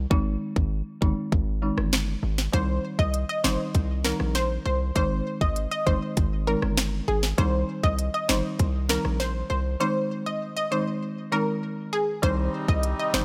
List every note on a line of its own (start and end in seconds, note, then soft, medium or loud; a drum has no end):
0.10 0.37 G#1 loud
0.10 0.94 D#3 medium
0.10 0.94 G#3 medium
0.10 0.94 C4 medium
0.10 0.95 D#4 loud
0.10 kick loud
0.56 0.82 G#1 medium
0.56 kick medium
1.01 1.15 G1 medium
1.01 1.29 D#3 medium
1.01 1.30 G#3 medium
1.01 1.30 C4 medium
1.01 1.30 D#4 medium
1.01 kick medium
1.32 1.71 G#1 loud
1.32 kick medium
1.62 1.78 D#3 medium
1.62 1.78 G#3 medium
1.62 1.78 C4 medium
1.62 1.78 D#4 medium
1.78 2.16 G1 medium
1.78 cross-stick medium
1.93 finger snap medium
1.93 snare loud
2.23 2.49 G#1 medium
2.38 snare medium
2.53 2.79 C2 loud
2.53 3.37 D#3 medium
2.53 3.37 G3 medium
2.53 3.37 C4 medium
2.53 3.37 D#4 loud
2.53 2.79 C5 medium
2.53 kick loud
2.53 closed hi-hat medium
2.99 3.25 C2 loud
2.99 3.11 D#5 medium
2.99 kick medium
3.14 closed hi-hat medium
3.29 3.42 D#5 medium
3.44 3.57 G1 medium
3.44 3.72 D#3 medium
3.44 3.72 G3 medium
3.44 3.72 C4 medium
3.44 3.72 D#4 medium
3.44 3.57 C5 medium
3.44 finger snap medium
3.44 snare loud
3.75 4.13 C2 medium
3.75 kick medium
3.75 closed hi-hat medium
4.04 4.20 D#3 medium
4.04 4.20 G3 medium
4.04 4.20 C4 medium
4.04 4.20 D#4 medium
4.04 4.17 A#4 medium
4.04 finger snap medium
4.04 snare loud
4.20 4.59 A#1 medium
4.20 cross-stick medium
4.35 4.48 C5 medium
4.35 snare medium
4.35 closed hi-hat medium
4.66 4.91 C2 medium
4.66 4.78 C5 medium
4.95 5.22 G#1 loud
4.95 5.79 D#3 medium
4.95 5.79 G#3 medium
4.95 5.79 C4 medium
4.95 5.79 D#4 loud
4.95 5.21 C5 loud
4.95 kick loud
4.95 closed hi-hat medium
5.41 5.67 G#1 medium
5.41 5.54 D#5 medium
5.41 kick medium
5.56 closed hi-hat medium
5.71 5.84 D#5 medium
5.86 6.00 G1 medium
5.86 6.14 D#3 medium
5.86 6.14 G#3 medium
5.86 6.15 C4 medium
5.86 6.15 D#4 medium
5.86 5.99 C5 medium
5.86 kick medium
6.17 6.56 G#1 loud
6.17 kick medium
6.17 closed hi-hat medium
6.47 6.62 D#3 medium
6.47 6.63 G#3 medium
6.47 6.63 C4 medium
6.47 6.63 D#4 medium
6.47 6.60 A#4 medium
6.62 7.01 G1 medium
6.62 cross-stick medium
6.77 finger snap medium
6.77 snare loud
6.77 closed hi-hat medium
7.08 7.34 G#1 loud
7.08 7.21 G#4 medium
7.23 snare medium
7.38 7.64 C2 loud
7.38 8.22 D#3 medium
7.38 8.22 G3 medium
7.38 8.22 C4 medium
7.38 8.22 D#4 loud
7.38 7.63 C5 medium
7.38 kick loud
7.38 closed hi-hat medium
7.83 8.09 C2 loud
7.83 7.96 D#5 medium
7.83 kick medium
7.99 closed hi-hat medium
8.14 8.27 D#5 medium
8.29 8.42 G1 medium
8.29 8.57 D#3 medium
8.29 8.57 G3 medium
8.29 8.57 C4 medium
8.29 8.57 D#4 medium
8.29 8.42 C5 medium
8.29 finger snap loud
8.29 snare loud
8.59 8.98 C2 medium
8.59 kick medium
8.59 closed hi-hat medium
8.89 9.05 D#3 medium
8.89 9.05 G3 medium
8.89 9.05 C4 medium
8.89 9.05 D#4 medium
8.89 9.02 A#4 medium
8.89 finger snap medium
8.89 snare loud
9.05 9.44 A#1 medium
9.05 cross-stick medium
9.20 9.33 C5 medium
9.20 snare medium
9.20 closed hi-hat medium
9.50 9.76 C2 medium
9.50 9.63 C5 medium
9.80 10.64 D#3 medium
9.80 10.64 G#3 medium
9.80 10.64 C4 medium
9.80 10.64 D#4 loud
9.80 10.06 C5 loud
10.26 10.39 D#5 medium
10.57 10.69 D#5 medium
10.71 10.99 D#3 medium
10.71 10.99 G#3 medium
10.71 10.99 C4 medium
10.71 10.99 D#4 medium
10.71 10.84 C5 medium
11.32 11.47 D#3 medium
11.32 11.47 G#3 medium
11.32 11.47 C4 medium
11.32 11.48 D#4 medium
11.32 11.45 A#4 medium
11.93 12.05 G#4 medium
12.22 12.49 C2 loud
12.22 13.25 C3 medium
12.22 13.06 D#3 loud
12.22 13.06 G3 medium
12.22 13.25 G3 medium
12.22 13.07 C4 medium
12.22 13.25 D#4 medium
12.22 13.07 D#4 loud
12.22 12.48 C5 medium
12.22 kick loud
12.22 closed hi-hat medium
12.68 12.94 C2 loud
12.68 12.81 D#5 medium
12.68 kick medium
12.83 closed hi-hat medium
12.99 13.12 D#5 medium
13.14 13.25 G1 medium
13.14 13.25 D#3 medium
13.14 13.25 G3 medium
13.14 13.25 C4 medium
13.14 13.25 D#4 medium
13.14 13.25 C5 medium
13.14 finger snap loud
13.14 snare loud